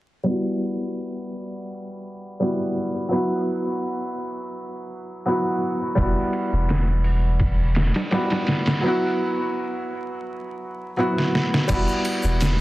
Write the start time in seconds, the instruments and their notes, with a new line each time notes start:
0.23 felt piano G3 B3
0.28 felt piano E4 F#4
2.40 felt piano G3 B3 E4 F#4
3.09 felt piano F#3 B3 E4
3.15 felt piano F#4
5.26 felt piano F#3 B3 E4 F#4
5.95 sub bass E1, felt piano G3 B3, kick, ride, shaker
5.99 felt piano E4 F#4
6.16 shaker
6.33 ride, triangle
6.51 sub bass E1, shaker
6.68 snare, ride, shaker
6.88 shaker
7.04 open hi-hat
7.23 shaker
7.39 kick, ride, shaker
7.59 shaker
7.75 snare, ride
7.94 snare, ride, shaker
8.11 felt piano G3 B3 E4 F#4, snare, ride, shaker
8.29 snare, ride, shaker
8.47 snare, ride
8.66 snare, ride, shaker
8.81 felt piano F#3 B3
8.86 felt piano E4 F#4
10.97 felt piano F#3 B3 E4 F#4
11.18 snare
11.35 snare
11.54 snare
11.68 sub bass E1, felt piano G3 B3 E4, kick, crash, ride, shaker
11.74 felt piano F#4
11.88 shaker
12.05 ride, triangle
12.23 sub bass E1, shaker
12.41 snare, ride, shaker